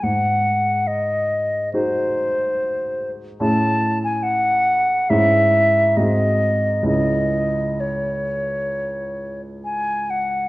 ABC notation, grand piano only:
X:1
M:4/4
L:1/8
Q:1/4=70
K:C#m
V:1 name="Grand piano"
G,,4 [DFG]4 | [A,,CEG]4 [G,,CEG]2 [G,,^B,FG]2 | [C,,CEG]8 |]